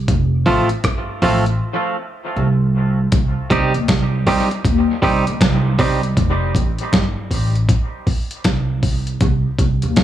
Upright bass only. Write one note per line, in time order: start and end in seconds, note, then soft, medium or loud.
0.08 0.43 F1 loud
0.46 0.68 A1 loud
0.84 1.06 G1 medium
1.22 1.57 A1 medium
2.36 3.09 C2 loud
3.13 3.35 C2 medium
3.51 3.73 C2 medium
3.75 3.88 D#2 medium
3.89 4.23 C2 medium
4.65 4.87 D#2 medium
5.03 5.25 C2 medium
5.28 5.40 D2 medium
5.41 6.13 C2 loud
6.17 6.52 F1 loud
6.55 6.77 A1 loud
6.93 7.15 G1 medium
7.31 7.66 A1 medium
8.45 9.17 C2 loud
9.21 9.43 C2 loud
9.59 9.81 C2 loud
9.83 9.96 D#2 medium
9.97 10.04 C2 medium